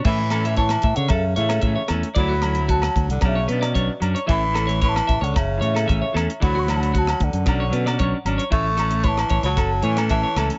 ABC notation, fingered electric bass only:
X:1
M:4/4
L:1/16
Q:1/4=113
K:A
V:1 name="Fingered electric bass" clef=bass
A,,6 A,, C, F,,2 A,,2 A,, z E,, z | D,,6 D,, =C,, B,,,2 B,,2 B,,, z F,, z | A,,,6 A,,, C,, F,,,2 A,,2 A,,, z E,, z | D,,6 D,, F,, B,,,2 B,,2 B,,, z G,,, z |
A,,,6 A,,, C,, F,,,2 A,,2 A,,, z C,, z |]